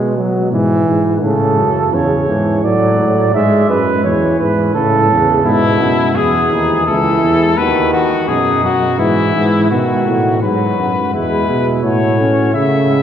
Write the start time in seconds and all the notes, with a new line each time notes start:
Already playing: B2 G#3
0.17 F#3
0.52 G#2 E3
0.87 G#2
1.23 A2 C#3 A4
1.58 F#2
1.93 E2 C#3 C#5
2.28 G#2 E3
2.63 A2 F#3 D5
2.99 A2
3.34 G#2 G#3 E5
3.69 F#2 B4
4.04 E2 E3 C#5
4.39 G#2 B4
4.75 A2 C#3 A4
5.10 E2 C#3
5.45 G#2 B2 B3 E4
5.80 F#2
6.15 E2 E3 B3 G#4
6.51 D#2 D#4
6.87 C#2 E3 E4 A4
7.22 E2
7.57 D#2 D#3 F#4 B4
7.93 F#4
8.28 F#2 B2 D#4 G#4
8.64 F#2 F#4
8.99 G#2 E3 B3 E4
9.35 G#2 B3
9.71 B2 D#3 F#4
10.07 A2
10.43 G#2 F#3 B4
10.78 F#2
11.14 E2 G#3 E4 B4
11.49 B2
11.84 A2 A3 F#4 C#5
12.20 C#4
12.54 C#3 A3 E4 E5
12.90 G#3